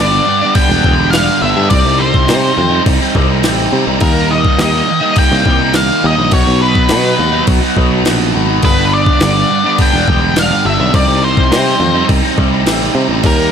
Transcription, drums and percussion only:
0.55 kick loud
0.55 crash medium
0.84 kick medium
1.13 snare loud
1.13 crash medium
1.70 kick loud
1.70 crash medium
2.14 kick medium
2.28 snare loud
2.28 crash medium
2.86 kick loud
2.86 crash medium
3.15 kick medium
3.43 snare loud
3.43 crash medium
4.00 kick loud
4.00 crash medium
4.45 kick medium
4.59 snare loud
4.59 crash medium
5.16 kick loud
5.16 crash medium
5.46 kick medium
5.74 snare loud
5.74 crash medium
6.31 kick loud
6.31 crash medium
6.75 kick medium
6.89 snare loud
6.89 crash medium
7.47 kick loud
7.47 crash medium
7.77 kick medium
8.05 snare loud
8.05 crash medium
8.63 kick loud
8.63 crash medium
9.06 kick medium
9.20 snare loud
9.20 crash medium
9.78 kick loud
9.78 crash medium
10.08 kick medium
10.36 snare loud
10.36 crash medium
10.94 kick loud
10.94 crash medium
11.37 kick medium
11.52 snare loud
11.52 crash medium
12.09 kick loud
12.09 crash medium
12.38 kick medium
12.67 snare loud
12.67 crash medium
13.24 kick loud
13.24 crash medium

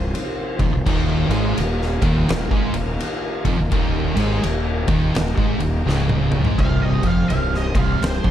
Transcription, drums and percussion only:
0.15 ride loud
0.59 kick medium
0.59 ride medium
0.86 kick loud
0.86 crash medium
1.31 ride medium
1.58 ride loud
1.82 snare soft
2.02 kick loud
2.02 ride medium
2.29 snare loud
2.29 ride loud
2.51 kick loud
2.74 ride medium
3.00 ride loud
3.45 kick loud
3.45 ride medium
3.72 kick loud
3.72 ride loud
4.17 ride medium
4.44 ride loud
4.88 kick loud
4.88 ride medium
5.15 snare loud
5.15 ride loud
5.38 kick loud
5.60 ride medium
5.89 snare medium
6.09 high tom medium
6.32 mid tom medium
6.45 floor tom medium
6.59 kick loud
6.59 ride medium
7.03 kick loud
7.03 ride medium
7.30 ride loud
7.54 snare soft
7.75 kick loud
7.75 ride medium
8.02 snare loud
8.02 ride loud
8.24 kick loud

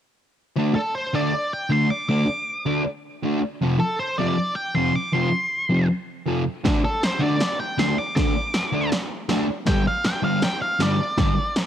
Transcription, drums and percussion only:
6.65 kick loud
6.65 snare loud
6.65 open hi-hat soft
7.03 snare loud
7.03 open hi-hat medium
7.41 snare loud
7.41 open hi-hat medium
7.79 snare loud
7.79 open hi-hat medium
8.16 kick medium
8.16 snare loud
8.16 open hi-hat medium
8.54 snare loud
8.54 open hi-hat medium
8.92 snare loud
8.92 open hi-hat medium
9.29 snare loud
9.29 open hi-hat medium
9.66 kick medium
9.66 snare loud
9.66 open hi-hat medium
10.04 snare loud
10.04 open hi-hat medium
10.42 snare loud
10.42 open hi-hat medium
10.80 snare loud
10.80 open hi-hat medium
11.18 kick loud
11.18 snare medium
11.18 open hi-hat medium
11.56 snare loud
11.56 open hi-hat medium

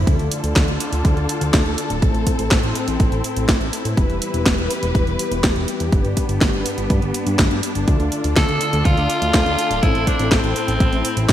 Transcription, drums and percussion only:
0.07 kick loud
0.07 closed hi-hat medium
0.19 closed hi-hat soft
0.32 closed hi-hat loud
0.44 closed hi-hat medium
0.56 kick loud
0.56 snare loud
0.56 clap medium
0.56 closed hi-hat medium
0.68 closed hi-hat soft
0.80 closed hi-hat loud
0.93 closed hi-hat soft
1.05 kick loud
1.05 closed hi-hat medium
1.17 closed hi-hat soft
1.29 closed hi-hat medium
1.41 closed hi-hat medium
1.54 kick loud
1.54 snare loud
1.54 clap medium
1.54 closed hi-hat medium
1.66 closed hi-hat soft
1.78 closed hi-hat medium
1.90 closed hi-hat medium
2.02 kick loud
2.02 closed hi-hat medium
2.14 closed hi-hat soft
2.27 kick medium
2.27 closed hi-hat medium
2.39 closed hi-hat medium
2.51 kick loud
2.51 snare loud
2.51 clap medium
2.51 closed hi-hat medium
2.63 closed hi-hat soft
2.75 closed hi-hat medium
2.88 closed hi-hat medium
3.00 kick loud
3.00 closed hi-hat medium
3.12 closed hi-hat soft
3.24 closed hi-hat loud
3.36 closed hi-hat medium
3.49 kick loud
3.49 snare loud
3.49 clap medium
3.49 closed hi-hat medium
3.61 closed hi-hat soft
3.73 closed hi-hat medium
3.85 closed hi-hat medium
3.97 kick loud
3.97 closed hi-hat soft
4.10 closed hi-hat soft
4.22 closed hi-hat medium
4.34 closed hi-hat soft
4.46 kick loud
4.46 snare loud
4.46 clap medium
4.46 closed hi-hat soft
4.58 closed hi-hat soft
4.70 closed hi-hat medium
4.83 closed hi-hat soft
4.95 kick loud
4.95 closed hi-hat soft
5.07 closed hi-hat soft
5.19 closed hi-hat medium
5.32 closed hi-hat soft
5.44 kick loud
5.44 snare loud
5.44 clap medium
5.44 closed hi-hat soft
5.56 closed hi-hat soft
5.68 closed hi-hat medium
5.80 closed hi-hat medium
5.92 kick loud
5.92 closed hi-hat soft
6.05 closed hi-hat soft
6.17 kick medium
6.17 closed hi-hat medium
6.29 closed hi-hat soft
6.41 kick loud
6.41 snare loud
6.41 clap medium
6.41 closed hi-hat medium
6.53 closed hi-hat soft
6.66 closed hi-hat medium
6.78 closed hi-hat soft
6.90 kick loud
6.90 closed hi-hat medium
7.02 closed hi-hat soft
7.14 closed hi-hat medium
7.27 closed hi-hat soft
7.39 kick loud
7.39 snare loud
7.39 clap medium
7.39 closed hi-hat soft
7.51 closed hi-hat soft
7.63 closed hi-hat medium
7.75 closed hi-hat soft
7.88 kick loud
7.88 closed hi-hat soft
8.00 closed hi-hat soft
8.12 closed hi-hat medium
8.24 closed hi-hat soft
8.36 kick loud
8.36 snare loud
8.36 clap medium
8.36 closed hi-hat soft
8.49 closed hi-hat soft
8.61 closed hi-hat medium
8.73 closed hi-hat soft
8.85 kick loud
8.85 closed hi-hat soft
8.97 closed hi-hat soft
9.10 closed hi-hat medium
9.22 closed hi-hat soft
9.34 kick loud
9.34 snare loud
9.34 clap medium
9.34 closed hi-hat soft
9.46 closed hi-hat soft
9.59 closed hi-hat medium
9.71 closed hi-hat soft
9.83 kick loud
9.83 closed hi-hat soft
9.95 closed hi-hat soft
10.07 kick medium
10.07 closed hi-hat medium
10.19 closed hi-hat medium
10.32 kick loud
10.32 snare loud
10.32 clap medium
10.32 closed hi-hat medium
10.44 closed hi-hat soft
10.56 closed hi-hat medium
10.68 closed hi-hat soft
10.80 kick loud
10.80 closed hi-hat medium
10.93 closed hi-hat soft
11.05 closed hi-hat medium
11.17 closed hi-hat medium
11.29 kick loud
11.29 snare loud
11.29 clap medium
11.29 closed hi-hat soft

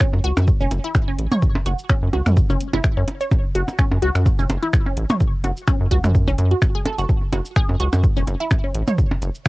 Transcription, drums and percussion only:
0.01 finger snap medium
0.01 kick loud
0.01 shaker medium
0.14 percussion blips soft
0.24 closed hi-hat medium
0.37 finger snap medium
0.37 percussion blips medium
0.37 shaker soft
0.48 kick loud
0.48 shaker medium
0.61 shaker soft
0.71 closed hi-hat loud
0.71 percussion blips soft
0.71 shaker soft
0.84 closed hi-hat soft
0.95 finger snap medium
0.95 kick loud
0.95 percussion blips medium
0.95 shaker medium
1.19 closed hi-hat loud
1.32 closed hi-hat soft
1.32 mid tom loud
1.32 percussion blips soft
1.32 shaker soft
1.42 kick loud
1.42 shaker soft
1.55 percussion blips medium
1.66 closed hi-hat medium
1.66 shaker soft
1.79 shaker soft
1.90 finger snap loud
1.90 kick loud
1.90 percussion blips soft
1.90 shaker medium
2.13 closed hi-hat loud
2.13 percussion blips medium
2.26 finger snap medium
2.26 mid tom medium
2.26 shaker soft
2.37 kick loud
2.37 shaker medium
2.50 percussion blips soft
2.50 shaker soft
2.60 closed hi-hat loud
2.60 shaker soft
2.73 closed hi-hat soft
2.73 percussion blips medium
2.84 finger snap loud
2.84 kick loud
2.84 shaker medium
3.08 closed hi-hat loud
3.08 percussion blips soft
3.21 closed hi-hat soft
3.21 shaker soft
3.31 kick loud
3.31 percussion blips medium
3.31 shaker soft
3.55 closed hi-hat medium
3.55 shaker soft
3.68 percussion blips soft
3.68 shaker soft
3.79 finger snap loud
3.79 kick loud
3.79 shaker medium
3.92 percussion blips medium
4.02 closed hi-hat loud
4.15 finger snap medium
4.15 shaker soft
4.26 kick loud
4.26 percussion blips soft
4.26 shaker medium
4.39 shaker soft
4.49 closed hi-hat loud
4.49 percussion blips medium
4.49 shaker soft
4.62 closed hi-hat soft
4.73 finger snap loud
4.73 kick loud
4.73 shaker medium
4.86 percussion blips soft
4.97 closed hi-hat loud
5.10 closed hi-hat soft
5.10 mid tom loud
5.10 percussion blips medium
5.10 shaker soft
5.20 kick loud
5.20 shaker medium
5.44 closed hi-hat loud
5.44 percussion blips soft
5.44 shaker soft
5.57 shaker soft
5.67 finger snap medium
5.67 kick loud
5.67 percussion blips medium
5.67 shaker medium
5.91 kick medium
5.91 closed hi-hat medium
5.91 shaker soft
6.04 finger snap medium
6.04 mid tom medium
6.04 percussion blips soft
6.04 shaker soft
6.15 kick loud
6.15 shaker soft
6.28 percussion blips medium
6.28 shaker soft
6.38 closed hi-hat medium
6.38 shaker soft
6.51 closed hi-hat soft
6.62 finger snap medium
6.62 kick loud
6.62 percussion blips soft
6.62 shaker medium
6.86 closed hi-hat loud
6.86 percussion blips medium
6.99 closed hi-hat soft
6.99 shaker soft
7.09 kick loud
7.09 percussion blips soft
7.09 shaker soft
7.33 closed hi-hat medium
7.33 percussion blips medium
7.33 shaker soft
7.46 shaker soft
7.56 finger snap medium
7.56 kick loud
7.56 shaker medium
7.69 percussion blips soft
7.80 closed hi-hat medium
7.93 finger snap medium
7.93 percussion blips medium
7.93 shaker soft
8.04 kick loud
8.04 shaker soft
8.17 shaker soft
8.27 closed hi-hat medium
8.27 percussion blips soft
8.27 shaker soft
8.40 closed hi-hat soft
8.51 finger snap medium
8.51 kick loud
8.51 percussion blips medium
8.51 shaker medium
8.75 closed hi-hat loud
8.88 closed hi-hat soft
8.88 mid tom medium
8.88 percussion blips soft
8.88 shaker soft
8.98 kick loud
8.98 shaker soft
9.11 percussion blips medium
9.22 closed hi-hat medium
9.22 shaker soft
9.35 shaker soft

